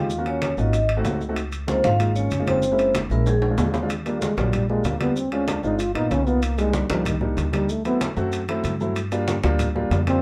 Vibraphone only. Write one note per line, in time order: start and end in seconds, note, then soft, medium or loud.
0.00 0.27 F5 medium
0.27 0.59 C#5 medium
0.59 0.88 D#5 medium
1.69 1.83 C5 medium
1.85 2.14 F5 loud
2.16 2.45 C#5 medium
2.48 2.92 C5 medium
3.12 3.26 A#4 medium
3.28 3.71 G#4 medium